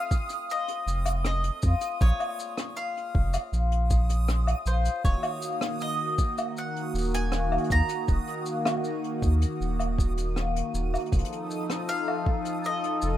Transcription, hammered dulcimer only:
Already playing: F2 D#3 A3 C#4 D#4 F4
0.10 C4
0.48 F4
0.87 C4
1.25 A3
1.63 F4
2.01 A#2
2.39 G#3
2.78 F4
3.15 C#4
3.53 F4
4.30 G#3
4.67 F4
5.05 D#3
5.43 A#3
5.81 F#4
6.19 D#4
6.58 F#4
6.95 D#4
7.33 A#3
7.71 F#4
8.08 D#3
8.47 A#3
8.85 F#4
9.23 D#4
9.62 F#4
9.99 D#4
10.38 A#3
10.75 F#4
11.13 F2
11.51 A3
11.89 F4
12.27 C4
12.65 F4
13.03 C4

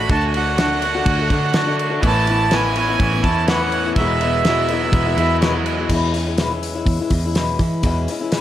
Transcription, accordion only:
0.11 A5
0.27 G#5
0.36 F#5
2.07 A5
2.54 G#5
2.76 G#5
3.24 A5
3.48 F#5
3.96 E5

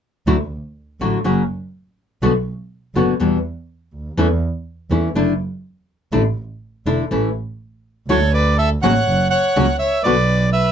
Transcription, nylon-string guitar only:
0.27 D3 F#3 A3 E4 F#4
1.01 D3 F#3 A3 E4 F#4
1.24 C#3 F#3 A#3 C#4 F#4
2.22 B2 D3 A3 B3 F#4
2.95 B2 D3 A3 B3 F#4
3.20 B2 E3 G3 B3 E4
4.17 E3 A3 C#4 E4
4.91 E3 A3 C#4 E4
5.15 D3 A3 D4 E4
6.12 D3 A3 D4 E4
6.86 D3 A3 D4 E4
7.11 E3 A3 C#4 E4
8.09 D3 F#3 A3 E4 F#4
8.83 C#3 F#3 A#3 C#4 F#4
9.56 C#3 F#3 A#3 C#4 F#4
10.05 B2 D3 A3 B3 F#4

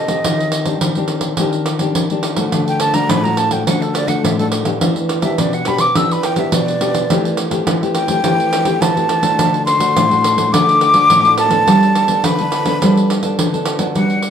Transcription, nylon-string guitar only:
Already playing: C3
0.09 C4 G4
0.24 D#3
0.66 C4 D4 G4
0.81 D#3
0.96 C4 D4 G4
1.39 D#3 C4 D4 G4
1.80 C4 D4 G4
1.96 D#3
2.11 C4 D4 G4
2.37 A3 D4 F#4
2.53 D3
2.94 A3 D4 F#4
3.10 A2
3.26 A3 D4 F#4
3.52 A3 D4 F#4
3.67 D3 A3 D4 F#4
4.07 A3 D4 F#4
4.23 A2
4.39 A3 D4 F#4
4.65 B3 D4 G4
4.81 E3
5.22 B3 D4 G4
5.39 B2
5.67 B3 D4 G4
5.95 E3 B3 D4 G4
6.36 B3 D4 G4
6.52 B2
6.80 B3 D4 G4
7.10 E3 A3 C4 G4
7.51 A3 C4 G4
7.67 E3
7.82 A3 C4 G4
8.08 A3 C4 G4
8.23 E3 A3 C4 G4
8.65 A3 C4 G4
8.81 E3
8.96 A3 C4 G4
9.22 A3 D4 F#4
9.39 D3
9.79 A3 D4 F#4
9.96 A2
10.10 A3 D4 F#4
10.37 A3 D4 F#4
10.53 D3 A3 D4 F#4
10.94 A3 D4 F#4
11.10 A2
11.25 A3 D4 F#4
11.51 B3 D4 A4
11.67 G3
12.08 B3 D4 A4
12.25 D3
12.40 B3 D4 A4
12.66 B3 D4 A4
12.82 G3 B3 D4 A4
13.23 B3 D4 A4
13.39 D3
13.53 B3 D4 A4
13.79 B3 D4 F#4
13.95 G3

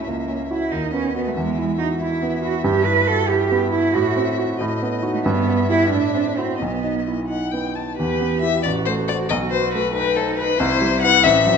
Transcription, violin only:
Already playing: E5
0.71 D#5
1.35 E5
3.93 E5
4.59 D#5
5.24 E5
6.58 D#5
7.28 F#5
7.52 G5
7.76 A5
7.97 B4
8.41 E5
8.63 D5
8.86 C5
9.08 D5
9.29 D#5
9.51 C5
9.73 B4
9.93 B4
10.16 A4
10.38 B4
10.59 C5
11.02 F#5
11.23 E5

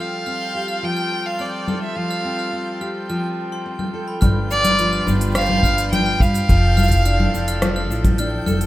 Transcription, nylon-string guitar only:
Already playing: F3 A4
0.00 C4
0.27 C4
0.55 G4
0.83 F3
1.40 C4
1.68 A4
1.96 F3
2.25 C4
2.53 C4
2.81 G4
3.10 F3
3.66 C4
3.94 A4
4.22 G2
4.51 D4
4.79 F3
5.07 B3
5.35 G2
5.64 D4
5.92 F3
6.21 B4
6.49 F3
6.77 E4
7.05 D4
7.34 D4
7.63 F3
7.91 E4
8.19 D4
8.47 A4

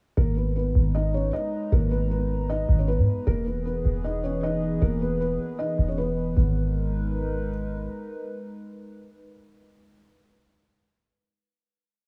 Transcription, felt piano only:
0.17 A#3 A#4
0.37 B3 B4
0.56 B3 B4
0.95 D#4 D#5
1.14 C#4 C#5
1.33 D#4 D#5
1.72 A#3 A#4
1.91 B3 B4
2.11 B3 B4
2.50 D#4 D#5
2.79 C#4 C#5
2.88 B3 B4
3.27 A#3 A#4
3.46 B3 B4
3.65 B3 B4
4.04 D#4 D#5
4.24 C#4 C#5
4.43 D#4 D#5
4.82 A#3 A#4
5.01 B3 B4
5.21 B3 B4
5.59 D#4 D#5
5.88 C#4 C#5
5.98 B3 B4
6.37 B3

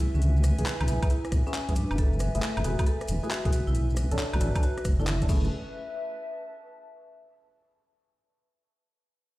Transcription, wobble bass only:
0.14 C#2
0.59 C#2
0.81 C#2
0.88 B1
1.32 B1
1.69 F#2
1.91 F#1
2.35 F#1
2.57 F#1
2.64 E1
3.09 E1
3.45 B1
3.67 B1
4.11 B1
4.33 B1
4.41 A1
4.85 F#1
5.29 F#1

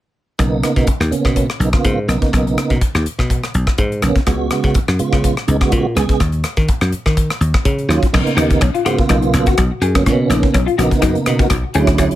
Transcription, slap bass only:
0.39 B1
0.76 B2
0.87 muted slap bass stroke
1.00 D#2
1.12 muted slap bass stroke
1.25 B2
1.60 B1
1.84 G#2
2.08 B1
2.33 B1
2.70 B2
2.81 muted slap bass stroke
2.95 D#2
3.06 muted slap bass stroke
3.18 B2
3.54 B1
3.78 G#2
4.03 B1
4.26 C#2
4.64 C#3
4.88 F#2
5.00 muted slap bass stroke
5.12 C#3
5.48 C#2
5.72 A#2
5.96 C#2
6.20 D#2
6.57 D#3
6.68 muted slap bass stroke
6.81 F#2
6.92 muted slap bass stroke
7.06 D#3
7.41 D#2
7.65 C#3
7.88 D#2
8.14 B1
8.26 muted slap bass stroke
8.36 D#2
8.61 B1
8.74 muted slap bass stroke
8.86 G#2
8.98 muted slap bass stroke
9.10 B1
9.34 B1
9.58 B1
9.81 F#2
10.06 B2
10.29 A#1
10.54 B1
10.78 A#1
11.02 F#2
11.15 muted slap bass stroke
11.27 B2
11.50 B1
11.75 D2
11.98 D2

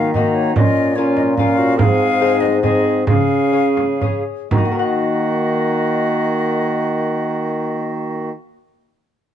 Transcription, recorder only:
Already playing: D#4
0.15 D#4
0.56 F#4
0.61 F4
0.96 F4
1.38 F4
1.57 F#4
1.78 A#4
1.82 G#4
2.62 G#4
3.07 G#4
4.51 F#4

